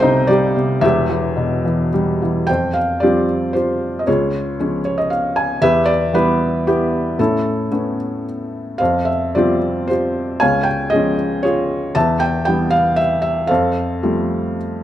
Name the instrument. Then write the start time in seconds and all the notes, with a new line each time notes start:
felt piano
Already playing: C2 C3 G3 G4 A4 D#5 F5 G5
0.00 C3 D#4 C5
0.27 G3 G4 D5
0.56 C3
0.81 E1 E2 G4 E5
1.09 E3
1.37 B2
1.65 E3
1.94 G3
2.22 E3
2.47 F2 C5 G5
2.73 F5
3.00 F3 G3 C4 F4 G4 D5
3.53 F4 G4 C5
3.99 D#5
4.07 C#2 F4 G#4 C#5
4.59 F3 G#3 C#4
4.85 C#5
4.98 D#5
5.10 F5
5.36 G#5
5.62 E2 G4 B4 E5
5.86 D5
6.13 E3 G3 B3 E4 G4 B4
6.67 B3 E4 G4
7.19 A2 C#4 E4 A4
7.71 A3 B3 C#4
8.78 F2 C5 F5
9.05 E5
9.35 F3 G3 C4 F4 G4 D5
9.87 F4 G4 C5
10.40 C#2 C#5 F5 G#5
10.63 G5
10.90 F3 G#3 G#4 D#5
10.94 C#4
11.43 F4 G#4 C#5
11.95 E2 E5 A5
12.20 G5
12.45 E3 G3 B3 G5
12.70 F5
12.96 E5
13.22 E5
13.47 F2 A4 C5 F5
14.03 F3 G3 A3